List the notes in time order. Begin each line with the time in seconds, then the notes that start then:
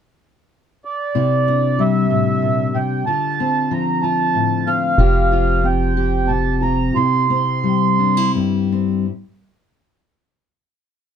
0.85 D5
1.15 C3 E4
1.48 D4
1.79 G3 E5
2.10 A2
2.42 A#2
2.75 C3 G5
3.06 D3 F4 A5
3.40 C4
3.71 F3 A#5
4.02 F4 A5
4.34 A2
4.67 C4 F5
4.98 F1 F3 G4
5.32 F4
5.64 C4 G5
5.97 G4
6.27 C3 A5
6.62 F4 A#5
6.96 C3 E4 C6
7.30 C4
7.63 G3
7.99 D4
8.17 E4
8.35 G2
8.72 C4